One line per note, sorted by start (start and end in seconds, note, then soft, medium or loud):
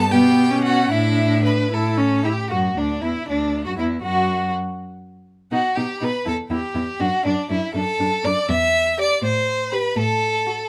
0.00 0.14 G2 medium
0.00 0.10 A4 loud
0.00 0.13 A5 loud
0.11 0.90 B2 medium
0.11 0.53 B3 medium
0.11 0.63 G4 medium
0.11 0.63 G5 loud
0.51 0.92 C#4 medium
0.64 0.90 F#4 medium
0.64 0.93 F#5 loud
0.90 1.70 A2 medium
0.90 1.70 D4 medium
0.90 1.43 E4 medium
0.90 1.45 E5 loud
1.44 1.75 B4 medium
1.44 1.54 B5 medium
1.71 2.29 A2 medium
1.71 1.99 E4 medium
1.71 2.26 A4 medium
1.71 2.26 A5 medium
1.98 2.23 C#4 medium
2.24 2.32 E4 medium
2.24 2.49 G4 medium
2.24 2.51 G5 medium
2.50 2.75 F#2 medium
2.50 2.79 F#4 medium
2.50 2.58 F#4 medium
2.50 2.59 F#5 medium
2.77 3.02 D2 medium
2.77 3.02 D4 medium
2.77 3.03 D4 medium
2.77 3.03 D5 medium
3.02 3.10 E2 medium
3.02 3.27 E4 medium
3.02 3.28 E5 medium
3.26 3.68 D2 medium
3.26 3.65 D4 medium
3.26 3.64 D5 medium
3.64 3.78 F#2 medium
3.64 3.78 F#4 medium
3.64 3.71 F#4 medium
3.64 3.76 F#5 soft
3.77 4.03 E2 medium
3.77 4.02 E4 medium
3.77 3.87 E4 medium
3.77 3.85 E5 medium
4.02 4.52 F#2 medium
4.02 4.51 F#4 medium
4.02 4.52 F#4 medium
4.02 4.51 F#5 medium
5.51 5.59 B2 medium
5.51 5.60 D#4 medium
5.51 5.77 F#4 medium
5.51 5.74 F#5 medium
5.75 5.85 B2 medium
5.75 5.84 D#4 soft
5.75 6.05 G4 medium
5.75 5.99 G5 medium
6.00 6.10 B2 medium
6.00 6.08 D#4 soft
6.00 6.27 B4 medium
6.00 6.25 B5 medium
6.25 6.34 E2 medium
6.25 6.33 E4 medium
6.25 6.36 A4 medium
6.25 6.33 A5 medium
6.50 6.59 E2 medium
6.50 6.58 E4 medium
6.50 7.02 G4 medium
6.50 7.01 G5 medium
6.74 6.83 E2 medium
6.74 6.82 E4 soft
7.00 7.08 F#2 medium
7.00 7.08 D4 medium
7.00 7.25 F#4 medium
7.00 7.26 F#5 medium
7.25 7.33 F#2 medium
7.25 7.50 D4 medium
7.25 7.34 D4 medium
7.25 7.52 D5 medium
7.50 7.58 F#2 medium
7.50 7.59 D4 soft
7.50 7.74 E4 medium
7.50 7.76 E5 medium
7.74 7.82 F#2 medium
7.74 7.84 D4 medium
7.74 8.26 A4 medium
7.74 8.24 A5 medium
7.99 8.07 F#2 medium
7.99 8.08 D4 medium
8.24 8.32 F#2 medium
8.24 8.33 D4 medium
8.24 8.49 D5 medium
8.24 8.48 D6 medium
8.49 9.07 E2 medium
8.49 8.98 E5 loud
8.49 9.00 E6 medium
8.98 9.16 G4 medium
8.98 9.23 D5 medium
8.98 9.22 D6 medium
9.22 9.81 A2 medium
9.22 9.75 C5 medium
9.22 9.71 C6 medium
9.71 9.91 G4 medium
9.71 9.98 B4 medium
9.71 9.97 B5 medium
9.96 10.56 A2 medium
9.96 10.69 A4 loud
9.96 10.69 A5 medium
10.47 10.65 F#4 medium